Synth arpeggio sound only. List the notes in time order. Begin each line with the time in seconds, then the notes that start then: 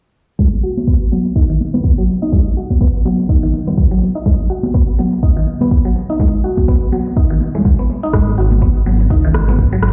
0.39 G#3
0.63 F#4
0.87 B3
1.12 F#3
1.36 D#4
1.49 D#3
1.74 B3
1.98 F#3
2.22 D#4
2.32 G#3
2.57 F#4
2.81 B3
3.05 F#3
3.29 D#4
3.43 D#3
3.67 B3
3.91 F#3
4.15 D#4
4.26 G#3
4.50 F#4
4.74 B3
4.99 F#3
5.23 D#4
5.37 D#3
5.61 B3
5.85 F#3
6.10 D#4
6.20 G#3
6.44 F#4
6.68 B3
6.92 F#3
7.17 D#4
7.30 D#3
7.55 G#3
7.79 B3
8.03 D#4
8.14 G#3
8.38 F#4
8.62 B3
8.86 F#3
9.11 D#4
9.25 D#3
9.49 B3
9.73 F#3